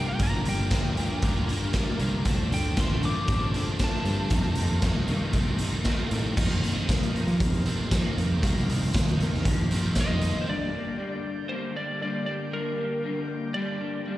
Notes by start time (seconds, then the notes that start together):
Already playing: C2 G2 D3 F3 G3 A#3 D4 G4 A#4 F5
0.08 G5
0.19 G1 G2 D3 F3 G3 A#3 D4 A#4, kick, closed hi-hat
0.23 A#5
0.44 G1 G2 D3 F3 G3 A#3 D4 A#4, closed hi-hat
0.49 G5
0.69 G2 D3 F3 G3 A#3 D4 A#4, kick, snare, closed hi-hat
0.85 D2
0.96 G2 D3 F3 G3 A#3 D4 A#4, closed hi-hat
1.21 D2 G2 D3 F3 G3 A#3 D4 A#4, kick, closed hi-hat
1.47 G2 D3 F3 G3 A#3 D4 A#4, closed hi-hat
1.73 G2 D3 F3 G3 A#3 D4 A#4, kick, snare, closed hi-hat
1.98 C2 G2 D3 F3 G3 A#3 D4 A#4, closed hi-hat
2.23 D2 D3 F3 A3 C4 D4 A4, kick, closed hi-hat
2.29 A4 C5
2.49 D2 D3 F3 C4 D4 A4, closed hi-hat
2.53 A3 G5
2.75 D3 F3 A3 C4 D4 A4, kick, snare, closed hi-hat
2.80 C6
2.90 A1
3.02 D3 F3 A3 C4 D4 A4 D6, closed hi-hat
3.26 A1 D3 F3 A3 C4 D4 A4, kick, closed hi-hat
3.52 D3 F3 C4 D4 A4, closed hi-hat
3.57 A3
3.78 D3 F3 A3 C4 D4 A4, kick, snare, closed hi-hat
3.84 A5
4.05 G2 D3 F3 A3 C4 D4 A4, closed hi-hat
4.30 F2 C3 D#3 A3 A#3 C4 D#4 A#4, kick, closed hi-hat
4.55 F2 C3 D#3 A3 A#3 C4 D#4, closed hi-hat
4.81 F2 C3 D#3 A3 A#3 D#4, kick, snare, closed hi-hat
4.86 C4
4.96 C2
5.08 F2 C3 D#3 A3 A#3 C4 D#4, closed hi-hat
5.33 C2 F2 C3 D#3 A3 A#3 C4 D#4, kick, closed hi-hat
5.58 F2 C3 D#3 A3 A#3 C4 D#4, closed hi-hat
5.84 F2 C3 D#3 A3 A#3 D#4, kick, snare, closed hi-hat
5.88 C4
6.11 F2 A2 C3 D#3 A3 A#3 C4 D#4, closed hi-hat
6.35 F2 C3 D#3 A#3 D#4 A#4 C5 F5, kick, crash
6.40 C4
6.64 closed hi-hat
6.89 C2, kick, snare, closed hi-hat, tambourine
7.03 closed hi-hat
7.12 F2 C3 D#3 A#3 D#4, closed hi-hat
7.27 F3, closed hi-hat
7.40 F2, kick, closed hi-hat
7.54 closed hi-hat
7.66 F2 C3 D#3 A3 C4, closed hi-hat
7.89 F2 C3 D#3 F3 A#3 D#4, kick, snare, closed hi-hat, tambourine
7.95 C4
8.17 F2, closed hi-hat
8.42 C2 F2 C3 D#3 A#3 C4 D#4, kick, closed hi-hat
8.57 closed hi-hat
8.69 closed hi-hat
8.82 closed hi-hat
8.94 D#2, kick, snare, closed hi-hat, tambourine
9.08 closed hi-hat
9.18 F2 C3 D#3 A#3 D#4, closed hi-hat
9.33 D#2, snare
9.45 F3, kick, closed hi-hat
9.71 F2 C3 D#3 A3 C4, closed hi-hat
9.95 F2 C3 D#3 A#3 C4 D#4, kick, snare, closed hi-hat, tambourine
10.01 D#5
10.09 F2
10.21 closed hi-hat
10.41 C5
10.47 G2 D3 G3 A#3 D4 G4 A#4 D5 G5
10.73 G3 A#3 D4
10.98 D3 G3 A#3 D4
11.49 G2 D3 G3 A#3 D4 C5
11.75 G3 A#3 D4 D5
12.01 D3 G3 A#3 D4 D5
12.26 G3 A#3 D4 D5
12.51 G2 D3 G3 A#3 D4 A#4
12.78 G3 A#3 D4
13.04 D3 G3 A#3 D4
13.54 G2 D3 G3 A#3 D4 D5
13.80 G3 A#3 D4
14.06 D3 G3 A#3 D4